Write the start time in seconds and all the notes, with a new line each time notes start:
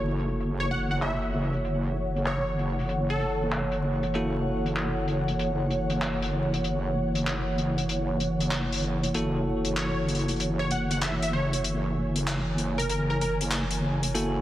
Already playing: F#1 E3 A#3 E4 F#4 A4 C#5, sub drop
0.08 closed hi-hat
0.28 closed hi-hat
0.40 closed hi-hat
0.60 C#5
0.70 F#5, closed hi-hat
0.76 closed hi-hat
0.81 closed hi-hat
0.86 closed hi-hat
0.91 F#5, closed hi-hat
0.94 closed hi-hat
0.97 closed hi-hat
0.99 closed hi-hat
1.02 E5, clap, closed hi-hat
1.22 closed hi-hat
1.53 closed hi-hat
1.65 closed hi-hat
2.16 closed hi-hat
2.26 C#5, clap, closed hi-hat
2.59 closed hi-hat
2.79 closed hi-hat
2.81 closed hi-hat
2.84 closed hi-hat
2.86 closed hi-hat
2.88 closed hi-hat
3.10 A4
3.20 closed hi-hat
3.52 clap, closed hi-hat
3.72 closed hi-hat
4.03 closed hi-hat
4.14 A#3 E4 F#4 A4, closed hi-hat
4.66 closed hi-hat
4.76 clap, closed hi-hat
5.08 closed hi-hat
5.28 closed hi-hat
5.39 closed hi-hat
5.70 closed hi-hat
5.90 closed hi-hat
6.01 clap, closed hi-hat
6.22 closed hi-hat
6.54 closed hi-hat
6.64 closed hi-hat
7.15 closed hi-hat
7.27 clap, closed hi-hat
7.58 closed hi-hat
7.78 closed hi-hat
7.89 closed hi-hat
8.20 closed hi-hat
8.40 closed hi-hat
8.51 clap, closed hi-hat
8.73 closed hi-hat
8.75 closed hi-hat
8.77 closed hi-hat
8.79 closed hi-hat
8.80 closed hi-hat
8.82 closed hi-hat
9.04 closed hi-hat
9.14 F#1 A#3 E4 F#4 A4, closed hi-hat
9.65 closed hi-hat
9.77 C#5, clap, closed hi-hat
10.08 closed hi-hat
10.15 closed hi-hat
10.19 closed hi-hat
10.28 closed hi-hat
10.36 closed hi-hat
10.40 closed hi-hat
10.59 C#5
10.71 F#5, closed hi-hat
10.91 F#5, closed hi-hat
11.01 E5, clap, closed hi-hat
11.16 G#5
11.22 E5, closed hi-hat
11.33 C#5
11.53 closed hi-hat
11.64 closed hi-hat
12.16 closed hi-hat
12.27 clap, closed hi-hat
12.58 closed hi-hat
12.78 A#4, closed hi-hat
12.90 A#4, closed hi-hat
13.10 A#4
13.21 A#4, closed hi-hat
13.41 closed hi-hat
13.51 clap, closed hi-hat
13.71 closed hi-hat
14.03 closed hi-hat
14.15 A#3 E4 F#4 A4, closed hi-hat